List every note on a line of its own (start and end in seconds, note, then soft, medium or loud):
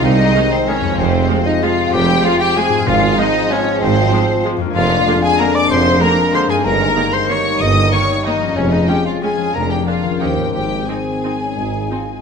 0.00 0.30 C2 medium
0.00 0.90 C3 medium
0.00 0.95 D#3 medium
0.00 0.84 G#3 soft
0.00 0.95 G#3 medium
0.00 0.94 C4 medium
0.00 0.94 D#4 medium
0.00 0.95 D#4 soft
0.00 0.93 C5 soft
0.00 0.97 D#5 medium
0.04 0.30 C2 medium
0.04 0.30 C3 medium
0.04 0.51 D#4 medium
0.04 0.52 D#4 medium
0.04 0.52 D#5 medium
0.04 0.54 D#5 medium
0.35 0.43 D#3 medium
0.35 0.43 G#3 medium
0.52 0.68 C4 medium
0.52 0.69 C4 medium
0.52 0.68 C5 medium
0.52 0.70 C5 medium
0.68 0.76 D#3 medium
0.68 0.76 G#3 medium
0.68 1.00 C#4 medium
0.68 0.98 C#4 medium
0.68 0.98 C#5 medium
0.80 2.80 F2 medium
0.85 2.72 G#3 soft
0.89 2.77 F4 soft
0.94 4.74 C5 soft
0.98 1.24 F1 medium
0.98 1.23 F2 medium
0.98 2.84 C3 medium
0.98 2.84 G#3 medium
0.98 1.45 C4 medium
0.98 1.46 C4 medium
0.98 2.84 C4 medium
0.98 2.84 F4 medium
0.98 1.45 C5 medium
0.98 1.48 C5 medium
1.30 1.38 F3 medium
1.30 1.38 G#3 medium
1.45 1.64 D#4 medium
1.45 1.52 D#4 medium
1.45 1.62 D#5 medium
1.45 1.64 D#5 medium
1.62 1.71 F3 medium
1.62 1.71 G#3 medium
1.62 1.92 F4 medium
1.62 1.93 F5 medium
1.62 1.96 F5 medium
1.92 2.18 F1 medium
1.92 2.18 F2 medium
1.92 2.23 G4 medium
1.92 2.24 G4 medium
1.92 2.23 G5 loud
1.92 2.26 G5 medium
2.24 2.32 F3 medium
2.24 2.32 G#3 medium
2.24 2.40 F4 medium
2.24 2.42 F4 medium
2.24 2.40 F5 loud
2.24 2.43 F5 medium
2.40 2.59 G4 medium
2.40 2.56 G4 medium
2.40 2.56 G5 medium
2.40 2.59 G5 medium
2.56 2.65 F3 medium
2.56 2.65 G#3 medium
2.56 2.88 G#4 medium
2.56 2.89 G#4 medium
2.56 2.87 G#5 loud
2.56 2.87 G#5 medium
2.69 4.67 G#2 medium
2.73 6.59 G#3 medium
2.78 6.61 F4 soft
2.83 4.69 G#4 soft
2.87 3.13 G#1 medium
2.87 3.31 G#2 medium
2.87 3.13 G#2 medium
2.87 4.57 F3 medium
2.87 4.57 G#3 medium
2.87 4.59 C4 medium
2.87 3.18 F4 medium
2.87 3.19 F4 medium
2.87 4.59 F4 medium
2.87 3.18 F5 loud
2.87 3.20 F5 medium
3.18 3.26 F3 medium
3.18 3.26 G#3 medium
3.18 3.51 D#4 loud
3.18 3.52 D#4 medium
3.18 3.51 D#5 medium
3.18 3.53 D#5 medium
3.51 3.59 F3 medium
3.51 3.59 G#3 medium
3.51 3.82 C#4 medium
3.51 3.83 C#4 medium
3.51 3.82 C#5 medium
3.81 4.07 G#1 medium
3.81 4.07 G#2 medium
3.81 4.45 C4 medium
3.81 4.43 C5 loud
3.81 4.43 C5 medium
4.13 4.21 F3 medium
4.13 4.21 G#3 medium
4.45 4.53 F3 medium
4.45 4.53 G#3 medium
4.57 6.57 F2 medium
4.61 6.50 A#3 soft
4.66 6.61 D4 soft
4.70 6.64 G#4 medium
4.74 5.00 F1 medium
4.74 5.01 F1 medium
4.74 5.01 F2 medium
4.74 6.61 F3 medium
4.74 7.25 G#3 medium
4.74 6.61 A#3 medium
4.74 6.62 D4 medium
4.74 5.19 F4 medium
4.74 5.19 F5 loud
4.74 5.24 F5 medium
5.07 5.15 D3 medium
5.07 5.15 A#3 medium
5.23 5.39 G#4 medium
5.23 5.41 G#4 medium
5.23 5.41 G#5 medium
5.23 5.39 G#5 loud
5.39 5.48 D3 medium
5.39 5.48 A#3 medium
5.39 5.54 A#4 medium
5.39 5.55 A#4 medium
5.39 5.55 A#5 medium
5.39 5.57 A#5 medium
5.55 5.62 D5 medium
5.55 5.70 D5 medium
5.55 5.70 D6 medium
5.55 5.72 D6 medium
5.70 5.95 F1 medium
5.70 5.96 F1 medium
5.70 5.96 F2 medium
5.70 6.03 C5 medium
5.70 6.01 C5 medium
5.70 6.03 C6 medium
5.70 6.01 C6 loud
6.01 6.09 D3 medium
6.01 6.09 A#3 medium
6.01 6.34 A#4 medium
6.01 6.36 A#4 medium
6.01 6.33 A#5 loud
6.01 6.33 A#5 medium
6.34 6.42 D3 medium
6.34 6.42 A#3 medium
6.34 6.50 C5 medium
6.34 6.49 C5 medium
6.34 6.40 C6 medium
6.34 6.51 C6 medium
6.47 8.49 G2 medium
6.47 6.56 G#4 medium
6.47 6.65 G#4 medium
6.47 6.56 G#5 medium
6.47 6.66 G#5 medium
6.51 8.51 A#3 soft
6.56 8.53 D#4 soft
6.60 8.52 D#3 medium
6.60 8.56 G4 soft
6.65 6.91 G1 medium
6.65 6.91 G2 medium
6.65 8.53 A#3 medium
6.65 8.57 D#4 medium
6.65 7.15 A#4 medium
6.65 7.13 A#4 medium
6.65 7.14 A#5 medium
6.65 7.13 A#5 loud
6.96 7.04 D#3 medium
6.96 7.05 A#3 medium
7.13 7.29 C5 medium
7.13 7.32 C5 medium
7.13 7.29 C6 medium
7.13 7.30 C6 medium
7.29 7.38 D#3 medium
7.29 8.57 G3 medium
7.29 7.38 A#3 medium
7.29 7.61 C#5 medium
7.29 7.60 C#5 medium
7.29 7.62 C#6 medium
7.29 7.61 C#6 medium
7.60 7.87 G1 medium
7.60 7.87 G2 medium
7.60 7.93 D#5 medium
7.60 7.92 D#5 medium
7.60 7.92 D#6 loud
7.60 7.92 D#6 medium
7.92 8.01 D#3 medium
7.92 8.01 A#3 medium
7.92 8.25 C#5 medium
7.92 8.26 C#5 medium
7.92 8.25 C#6 medium
7.92 8.26 C#6 medium
8.25 8.34 D#3 soft
8.25 8.34 A#3 medium
8.25 8.56 D#4 medium
8.25 8.57 D#4 medium
8.25 8.58 D#5 medium
8.25 8.56 D#5 medium
8.38 9.36 F3 soft
8.43 9.49 C#4 soft
8.47 9.44 F4 soft
8.52 9.49 G#4 soft
8.56 8.83 F1 medium
8.56 8.83 F2 medium
8.56 9.19 F3 medium
8.56 9.18 G#3 medium
8.56 8.72 C#4 medium
8.56 8.73 C#4 medium
8.56 9.18 C#4 medium
8.56 9.18 G#4 medium
8.56 8.73 C#5 medium
8.56 8.72 C#5 medium
8.71 8.89 D#4 medium
8.71 8.88 D#4 medium
8.71 8.88 D#5 medium
8.71 8.90 D#5 medium
8.88 8.96 G#3 soft
8.88 8.96 C#4 soft
8.88 9.05 G4 medium
8.88 9.06 G4 medium
8.88 9.05 G5 medium
8.88 9.07 G5 medium
9.05 9.24 F4 medium
9.05 9.22 F4 soft
9.05 9.12 F5 medium
9.05 9.22 F5 medium
9.21 9.52 F3 medium
9.21 9.53 G#3 medium
9.21 9.31 G#3 soft
9.21 9.54 C#4 soft
9.21 9.31 C#4 soft
9.21 9.56 G#4 medium
9.21 9.54 G#4 medium
9.21 9.54 G#5 medium
9.21 9.57 G#5 medium
9.37 10.46 F3 soft
9.41 10.15 D4 soft
9.46 10.10 F4 soft
9.50 9.81 F2 soft
9.50 9.85 F3 soft
9.50 9.85 A#3 soft
9.50 10.20 G#4 soft
9.54 9.81 F1 soft
9.54 9.85 D4 soft
9.54 9.86 G#4 soft
9.54 9.70 A#4 medium
9.54 9.72 A#4 medium
9.54 9.70 A#5 medium
9.54 9.72 A#5 medium
9.69 9.76 G4 soft
9.69 9.88 G4 soft
9.69 9.89 G5 medium
9.69 9.87 G5 medium
9.86 10.19 F3 soft
9.86 10.20 A#3 soft
9.86 9.95 A#3 soft
9.86 10.20 D4 soft
9.86 9.95 D4 soft
9.86 10.20 F4 medium
9.86 10.23 F4 soft
9.86 10.20 G#4 soft
9.86 10.22 F5 medium
9.86 10.20 F5 medium
10.03 10.46 D#3 soft
10.07 10.49 C#4 soft
10.11 10.51 F4 soft
10.16 10.48 C5 soft
10.20 10.49 D#2 soft
10.20 10.53 F3 soft
10.20 10.54 A#3 soft
10.20 10.28 C#4 soft
10.20 10.54 C#4 soft
10.20 10.28 D#4 soft
10.20 10.52 G4 soft
10.20 10.54 G4 medium
10.20 10.52 C5 soft
10.20 10.53 G5 soft
10.20 10.53 G5 medium
10.36 12.21 G#2 soft
10.40 12.21 C4 soft
10.45 12.21 D#4 soft
10.49 10.82 G#2 soft
10.49 12.21 C5 soft
10.49 10.90 G5 soft
10.54 10.83 G#1 soft
10.54 10.87 D#3 soft
10.54 10.87 G#3 soft
10.54 10.88 C4 soft
10.54 10.88 G4 medium
10.54 10.90 G4 soft
10.54 10.88 C5 soft
10.54 10.88 G5 medium
10.88 12.21 D#3 soft
10.88 12.21 G#3 soft
10.88 11.38 C4 soft
10.88 10.97 C4 soft
10.88 10.97 D#4 soft
10.88 12.21 G#4 soft
10.88 12.21 G#5 soft
11.24 11.32 C4 soft
11.24 11.32 D#4 soft
11.41 11.58 C#4 soft
11.57 11.85 G#1 soft
11.57 11.85 G#2 soft
11.57 11.91 D#4 soft
11.90 11.99 C4 soft
11.90 11.99 D#4 soft
11.90 12.21 F4 soft